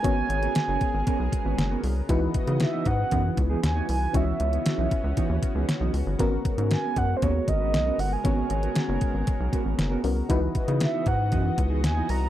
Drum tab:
HH |x-xxx-x-x-x-x-o-|x-xxx-x-x-x-x-o-|x-xxx-x-x-x-x-o-|x-xxx-x-x-x-x-o-|
SD |----o-------o---|----o-------o---|----o-------o---|----o-------o---|
BD |o-----o-o-o-----|o-o---o-o-o-----|o-----o-o-o-----|o-o---o-o-o-----|

HH |x-xxx-x-x-x-x-o-|x-xxx-x-x-x-x-o-|
SD |----o-------o---|----o-------o---|
BD |o-----o-o-o-----|o-o---o-o-o-----|